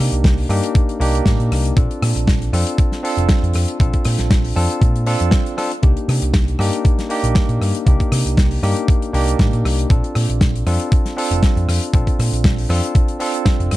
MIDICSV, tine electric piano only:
0, 0, Header, 1, 2, 480
1, 0, Start_track
1, 0, Tempo, 508475
1, 1668, Time_signature, 4, 2, 24, 8
1, 12997, End_track
2, 0, Start_track
2, 0, Title_t, "Tine electric piano"
2, 0, Program_c, 0, 4
2, 0, Note_on_c, 0, 58, 82
2, 0, Note_on_c, 0, 62, 75
2, 0, Note_on_c, 0, 63, 74
2, 0, Note_on_c, 0, 67, 90
2, 436, Note_off_c, 0, 58, 0
2, 439, Note_off_c, 0, 62, 0
2, 442, Note_off_c, 0, 63, 0
2, 446, Note_off_c, 0, 67, 0
2, 463, Note_on_c, 0, 58, 95
2, 466, Note_on_c, 0, 62, 86
2, 470, Note_on_c, 0, 63, 89
2, 473, Note_on_c, 0, 67, 102
2, 919, Note_off_c, 0, 58, 0
2, 920, Note_off_c, 0, 62, 0
2, 922, Note_off_c, 0, 63, 0
2, 923, Note_off_c, 0, 67, 0
2, 939, Note_on_c, 0, 58, 101
2, 946, Note_on_c, 0, 62, 93
2, 953, Note_on_c, 0, 63, 93
2, 957, Note_on_c, 0, 67, 107
2, 1636, Note_off_c, 0, 58, 0
2, 1640, Note_off_c, 0, 62, 0
2, 1643, Note_off_c, 0, 63, 0
2, 1646, Note_off_c, 0, 67, 0
2, 1661, Note_on_c, 0, 60, 82
2, 1667, Note_on_c, 0, 62, 75
2, 1673, Note_on_c, 0, 65, 73
2, 1680, Note_on_c, 0, 69, 92
2, 2358, Note_off_c, 0, 60, 0
2, 2361, Note_off_c, 0, 62, 0
2, 2363, Note_off_c, 0, 65, 0
2, 2367, Note_off_c, 0, 69, 0
2, 2386, Note_on_c, 0, 60, 95
2, 2389, Note_on_c, 0, 62, 85
2, 2392, Note_on_c, 0, 65, 86
2, 2396, Note_on_c, 0, 69, 105
2, 2840, Note_off_c, 0, 60, 0
2, 2841, Note_off_c, 0, 62, 0
2, 2843, Note_off_c, 0, 65, 0
2, 2845, Note_off_c, 0, 69, 0
2, 2858, Note_on_c, 0, 60, 96
2, 2864, Note_on_c, 0, 62, 92
2, 2872, Note_on_c, 0, 65, 92
2, 2877, Note_on_c, 0, 69, 109
2, 3556, Note_off_c, 0, 60, 0
2, 3559, Note_off_c, 0, 62, 0
2, 3563, Note_off_c, 0, 65, 0
2, 3566, Note_off_c, 0, 69, 0
2, 3580, Note_on_c, 0, 60, 80
2, 3585, Note_on_c, 0, 62, 71
2, 3590, Note_on_c, 0, 65, 75
2, 3598, Note_on_c, 0, 69, 90
2, 4277, Note_off_c, 0, 60, 0
2, 4279, Note_off_c, 0, 62, 0
2, 4282, Note_off_c, 0, 65, 0
2, 4286, Note_off_c, 0, 69, 0
2, 4300, Note_on_c, 0, 60, 93
2, 4303, Note_on_c, 0, 62, 86
2, 4306, Note_on_c, 0, 65, 89
2, 4309, Note_on_c, 0, 69, 102
2, 4757, Note_off_c, 0, 60, 0
2, 4759, Note_off_c, 0, 62, 0
2, 4760, Note_off_c, 0, 65, 0
2, 4761, Note_off_c, 0, 69, 0
2, 4780, Note_on_c, 0, 60, 99
2, 4781, Note_on_c, 0, 62, 96
2, 4784, Note_on_c, 0, 65, 91
2, 4788, Note_on_c, 0, 69, 111
2, 5237, Note_off_c, 0, 60, 0
2, 5237, Note_off_c, 0, 62, 0
2, 5239, Note_off_c, 0, 65, 0
2, 5241, Note_off_c, 0, 69, 0
2, 5259, Note_on_c, 0, 60, 94
2, 5263, Note_on_c, 0, 62, 89
2, 5265, Note_on_c, 0, 65, 91
2, 5268, Note_on_c, 0, 69, 104
2, 5386, Note_off_c, 0, 60, 0
2, 5388, Note_off_c, 0, 62, 0
2, 5389, Note_off_c, 0, 65, 0
2, 5391, Note_off_c, 0, 69, 0
2, 5494, Note_on_c, 0, 58, 80
2, 5501, Note_on_c, 0, 62, 75
2, 5507, Note_on_c, 0, 63, 72
2, 5513, Note_on_c, 0, 67, 89
2, 6194, Note_off_c, 0, 58, 0
2, 6197, Note_off_c, 0, 62, 0
2, 6200, Note_off_c, 0, 63, 0
2, 6203, Note_off_c, 0, 67, 0
2, 6220, Note_on_c, 0, 62, 86
2, 6221, Note_on_c, 0, 58, 91
2, 6223, Note_on_c, 0, 63, 89
2, 6229, Note_on_c, 0, 67, 101
2, 6677, Note_off_c, 0, 58, 0
2, 6677, Note_off_c, 0, 62, 0
2, 6679, Note_off_c, 0, 63, 0
2, 6681, Note_off_c, 0, 67, 0
2, 6695, Note_on_c, 0, 58, 98
2, 6701, Note_on_c, 0, 62, 89
2, 6707, Note_on_c, 0, 63, 90
2, 6713, Note_on_c, 0, 67, 111
2, 7394, Note_off_c, 0, 58, 0
2, 7397, Note_off_c, 0, 62, 0
2, 7401, Note_off_c, 0, 63, 0
2, 7404, Note_off_c, 0, 67, 0
2, 7417, Note_on_c, 0, 58, 81
2, 7423, Note_on_c, 0, 62, 76
2, 7430, Note_on_c, 0, 63, 76
2, 7436, Note_on_c, 0, 67, 90
2, 8115, Note_off_c, 0, 58, 0
2, 8119, Note_off_c, 0, 62, 0
2, 8122, Note_off_c, 0, 63, 0
2, 8125, Note_off_c, 0, 67, 0
2, 8142, Note_on_c, 0, 58, 98
2, 8145, Note_on_c, 0, 62, 86
2, 8150, Note_on_c, 0, 63, 85
2, 8153, Note_on_c, 0, 67, 108
2, 8598, Note_off_c, 0, 58, 0
2, 8599, Note_off_c, 0, 62, 0
2, 8602, Note_off_c, 0, 63, 0
2, 8603, Note_off_c, 0, 67, 0
2, 8618, Note_on_c, 0, 58, 98
2, 8623, Note_on_c, 0, 62, 89
2, 8631, Note_on_c, 0, 63, 94
2, 8636, Note_on_c, 0, 67, 110
2, 9316, Note_off_c, 0, 58, 0
2, 9318, Note_off_c, 0, 62, 0
2, 9322, Note_off_c, 0, 63, 0
2, 9325, Note_off_c, 0, 67, 0
2, 9337, Note_on_c, 0, 60, 81
2, 9344, Note_on_c, 0, 62, 77
2, 9350, Note_on_c, 0, 65, 76
2, 9356, Note_on_c, 0, 69, 93
2, 10035, Note_off_c, 0, 60, 0
2, 10039, Note_off_c, 0, 62, 0
2, 10042, Note_off_c, 0, 65, 0
2, 10045, Note_off_c, 0, 69, 0
2, 10066, Note_on_c, 0, 60, 94
2, 10069, Note_on_c, 0, 62, 88
2, 10071, Note_on_c, 0, 65, 89
2, 10074, Note_on_c, 0, 69, 103
2, 10520, Note_off_c, 0, 60, 0
2, 10521, Note_off_c, 0, 62, 0
2, 10523, Note_off_c, 0, 65, 0
2, 10524, Note_off_c, 0, 69, 0
2, 10537, Note_on_c, 0, 60, 100
2, 10544, Note_on_c, 0, 62, 94
2, 10550, Note_on_c, 0, 65, 91
2, 10555, Note_on_c, 0, 69, 112
2, 11236, Note_off_c, 0, 60, 0
2, 11239, Note_off_c, 0, 62, 0
2, 11242, Note_off_c, 0, 65, 0
2, 11244, Note_off_c, 0, 69, 0
2, 11263, Note_on_c, 0, 60, 83
2, 11269, Note_on_c, 0, 62, 75
2, 11274, Note_on_c, 0, 65, 74
2, 11281, Note_on_c, 0, 69, 93
2, 11958, Note_off_c, 0, 60, 0
2, 11961, Note_off_c, 0, 62, 0
2, 11964, Note_off_c, 0, 65, 0
2, 11967, Note_off_c, 0, 69, 0
2, 11981, Note_on_c, 0, 60, 95
2, 11982, Note_on_c, 0, 62, 86
2, 11987, Note_on_c, 0, 65, 86
2, 11989, Note_on_c, 0, 69, 102
2, 12438, Note_off_c, 0, 60, 0
2, 12438, Note_off_c, 0, 62, 0
2, 12440, Note_off_c, 0, 65, 0
2, 12441, Note_off_c, 0, 69, 0
2, 12457, Note_on_c, 0, 60, 97
2, 12461, Note_on_c, 0, 62, 89
2, 12469, Note_on_c, 0, 65, 90
2, 12474, Note_on_c, 0, 69, 109
2, 12997, Note_off_c, 0, 60, 0
2, 12997, Note_off_c, 0, 62, 0
2, 12997, Note_off_c, 0, 65, 0
2, 12997, Note_off_c, 0, 69, 0
2, 12997, End_track
0, 0, End_of_file